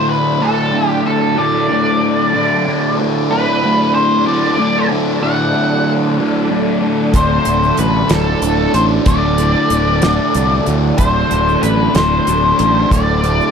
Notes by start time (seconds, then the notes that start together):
Already playing: D2 A2 D3 F#3 A3 D4 A4 D5
0.10 B4
0.40 D2 A2 D3 A4
0.72 D2 A2 D3
0.88 G4
1.04 A2 D3 A4
1.36 D2 A2 D3 D5
1.69 A2 D3
2.34 D2 A2 D3
2.66 D2 A2 D3
2.98 A2 D3
3.30 D2 A2 D3 B4
3.62 A2 D3
3.95 C5
4.26 D2 A2 D3 D5
4.58 D2 A2 D3
4.90 A2 D3
5.21 D2 A2 D3 F#5
5.53 A2 D3
6.18 D2 A2 D3
6.49 D2 A2 D3
6.82 A2 D3
7.14 D1 D2 A2 D3 C5, kick, closed hi-hat, shaker
7.45 D1 A2 D3, closed hi-hat, shaker
7.63 shaker
7.77 A1 B4, closed hi-hat, shaker
8.09 D1 D2 A2 D3 A4, snare, closed hi-hat
8.42 D1 D2 A2 D3, closed hi-hat, shaker
8.74 A1 A2 D3 C5, closed hi-hat
9.06 D1 D2 A2 D3 D5, kick, closed hi-hat, shaker
9.38 A2 D3, closed hi-hat, shaker
9.70 D1, closed hi-hat, shaker
10.02 D2 A2 D3, snare, closed hi-hat
10.34 C2 D2 A2 D3, closed hi-hat, shaker
10.66 D2 A2 D3, closed hi-hat
10.98 D1 D2 A2 D3 C5, kick, closed hi-hat, shaker
11.31 D1 A2 D3, closed hi-hat, shaker
11.48 shaker
11.63 A1 B4, closed hi-hat, shaker
11.94 D1 D2 A2 D3 C5, snare, closed hi-hat
12.27 D1 D2 A2 D3, closed hi-hat, shaker
12.59 A1 A2 D3, closed hi-hat
12.91 D1 D2 A2 D3 D5, kick, closed hi-hat, shaker
13.23 A2 D3, closed hi-hat, shaker
13.41 shaker